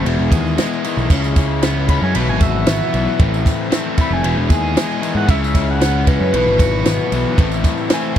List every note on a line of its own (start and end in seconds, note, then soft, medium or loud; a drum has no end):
0.00 0.82 E3 medium
0.00 1.07 E5 medium
0.05 0.18 E1 loud
0.05 1.10 E2 medium
0.05 0.58 E3 medium
0.05 0.58 G#3 loud
0.05 0.59 B3 loud
0.05 0.60 E4 loud
0.05 1.10 D#5 medium
0.05 1.10 G#5 medium
0.05 ride loud
0.19 0.30 E1 medium
0.31 0.56 D#2 loud
0.31 1.10 G#4 medium
0.31 kick medium
0.31 ride medium
0.31 tambourine medium
0.47 tambourine soft
0.58 1.10 E3 medium
0.58 0.86 G#3 medium
0.58 0.85 B3 medium
0.58 0.84 E4 medium
0.58 snare loud
0.58 ride loud
0.58 tambourine medium
0.73 tambourine soft
0.83 1.10 D#3 medium
0.83 1.10 B3 medium
0.83 1.13 E4 medium
0.83 ride medium
0.83 tambourine medium
0.88 1.10 G#3 medium
0.97 1.09 B1 medium
0.97 tambourine soft
1.09 1.98 C#2 loud
1.09 1.61 C#3 medium
1.09 1.37 G#3 loud
1.09 1.37 C#4 loud
1.09 1.36 E4 loud
1.09 2.14 C#5 medium
1.09 7.33 E5 medium
1.09 2.14 B5 medium
1.09 kick loud
1.09 crash loud
1.24 tambourine medium
1.36 1.62 G#3 medium
1.36 1.63 C#4 medium
1.36 1.65 E4 medium
1.36 kick medium
1.36 snare soft
1.36 ride medium
1.36 tambourine medium
1.62 2.14 C#3 medium
1.62 1.91 G#3 medium
1.62 2.15 B3 medium
1.62 1.89 C#4 medium
1.62 1.89 E4 medium
1.62 snare loud
1.62 ride loud
1.62 tambourine medium
1.89 2.15 G#3 medium
1.89 2.14 C#4 medium
1.89 2.17 E4 medium
1.89 2.01 B5 loud
1.89 kick medium
1.89 ride medium
2.02 2.14 F#2 medium
2.02 2.15 G#5 medium
2.14 2.28 B1 loud
2.14 2.93 B2 loud
2.14 2.66 E3 medium
2.14 2.66 F#3 loud
2.14 2.67 B3 loud
2.14 2.68 E4 loud
2.14 3.20 B4 medium
2.14 2.28 B5 medium
2.14 ride loud
2.18 3.20 F#5 medium
2.29 2.65 G#1 medium
2.29 2.41 G#5 medium
2.39 3.19 F#4 medium
2.39 3.43 E5 loud
2.39 kick medium
2.39 ride medium
2.39 tambourine medium
2.66 2.80 G#1 medium
2.66 3.20 E3 medium
2.66 2.93 F#3 medium
2.66 2.92 B3 medium
2.66 2.92 E4 medium
2.66 snare loud
2.66 ride loud
2.66 tambourine loud
2.81 tambourine soft
2.92 3.06 B1 medium
2.92 5.01 E3 medium
2.92 3.19 F#3 medium
2.92 3.18 B3 medium
2.92 3.21 E4 medium
2.92 ride medium
3.19 3.44 A1 medium
3.19 3.72 A2 medium
3.19 3.70 E3 medium
3.19 3.46 A3 loud
3.19 3.45 C4 loud
3.19 3.44 E4 medium
3.19 4.23 C5 medium
3.19 4.24 A5 medium
3.19 kick loud
3.19 ride loud
3.34 tambourine medium
3.45 3.70 A3 medium
3.45 3.71 C4 medium
3.45 3.72 E4 medium
3.45 kick medium
3.45 snare soft
3.45 ride medium
3.45 tambourine medium
3.70 4.23 E3 medium
3.70 3.99 A3 medium
3.70 3.97 C4 medium
3.70 3.98 E4 medium
3.70 snare loud
3.70 ride medium
3.70 tambourine medium
3.98 4.24 A3 medium
3.98 4.23 C4 medium
3.98 4.26 E4 medium
3.98 4.12 B5 medium
3.98 kick medium
3.98 ride medium
4.11 4.23 F1 medium
4.11 5.14 G#5 loud
4.23 4.37 E1 loud
4.23 5.29 E2 medium
4.23 4.74 E3 medium
4.23 4.75 G#3 loud
4.23 4.75 B3 loud
4.23 4.77 E4 loud
4.23 5.28 D#5 medium
4.23 5.28 G#5 medium
4.23 ride loud
4.37 4.49 E1 medium
4.49 4.75 D#2 loud
4.49 5.28 G#4 medium
4.49 kick medium
4.49 ride medium
4.49 tambourine medium
4.75 5.27 E3 medium
4.75 5.03 G#3 medium
4.75 5.02 B3 medium
4.75 5.01 E4 medium
4.75 snare loud
4.75 ride loud
4.75 tambourine loud
4.91 tambourine soft
5.01 5.29 D#3 medium
5.01 5.27 G#3 medium
5.01 5.27 B3 medium
5.01 5.30 E4 medium
5.01 ride medium
5.01 tambourine medium
5.15 5.28 G#2 loud
5.15 5.29 F#5 loud
5.28 6.16 C#2 loud
5.28 5.79 C#3 medium
5.28 5.56 G#3 loud
5.28 5.55 C#4 loud
5.28 5.55 E4 loud
5.28 5.42 E5 loud
5.28 6.34 B5 medium
5.28 kick loud
5.28 ride loud
5.32 6.34 C#5 medium
5.44 5.69 E5 medium
5.44 tambourine medium
5.55 5.80 G#3 medium
5.55 5.81 C#4 medium
5.55 5.83 E4 medium
5.55 kick medium
5.55 snare soft
5.55 ride medium
5.70 6.07 F#5 loud
5.80 6.32 C#3 medium
5.80 6.08 G#3 medium
5.80 6.33 B3 medium
5.80 6.07 C#4 medium
5.80 6.06 E4 medium
5.80 snare loud
5.80 ride loud
5.80 tambourine loud
6.07 6.33 G#3 medium
6.07 6.32 C#4 medium
6.07 6.36 E4 medium
6.07 7.60 B4 loud
6.07 kick medium
6.07 ride medium
6.20 6.33 F#2 medium
6.33 6.46 B1 loud
6.33 7.12 B2 medium
6.33 6.85 E3 medium
6.33 6.85 F#3 loud
6.33 6.87 B3 loud
6.33 6.88 E4 loud
6.33 7.38 B4 medium
6.33 7.38 F#5 medium
6.33 ride loud
6.47 6.84 G#1 medium
6.58 7.38 F#4 medium
6.58 kick medium
6.58 ride medium
6.58 tambourine medium
6.85 6.98 G#1 medium
6.85 7.38 E3 medium
6.85 7.14 F#3 medium
6.85 7.12 B3 medium
6.85 7.12 E4 medium
6.85 snare loud
6.85 ride loud
6.85 tambourine medium
7.00 tambourine soft
7.11 7.24 B1 medium
7.11 8.19 E3 medium
7.11 7.38 F#3 medium
7.11 7.37 B3 medium
7.11 7.40 E4 medium
7.11 ride medium
7.11 tambourine medium
7.37 7.63 A1 loud
7.37 7.90 A2 medium
7.37 7.89 E3 medium
7.37 7.66 A3 loud
7.37 7.65 C4 loud
7.37 7.63 E4 loud
7.37 8.19 C5 medium
7.37 8.19 A5 medium
7.37 8.19 E6 medium
7.37 kick loud
7.37 ride loud
7.52 tambourine medium
7.64 7.90 A3 medium
7.64 7.91 C4 medium
7.64 7.92 E4 medium
7.64 kick medium
7.64 snare soft
7.64 ride medium
7.64 tambourine medium
7.78 tambourine soft
7.90 8.19 E3 medium
7.90 8.17 A3 medium
7.90 8.16 C4 medium
7.90 8.15 E4 medium
7.90 8.17 G#5 loud
7.90 snare loud
7.90 ride loud
7.90 tambourine loud
8.03 tambourine soft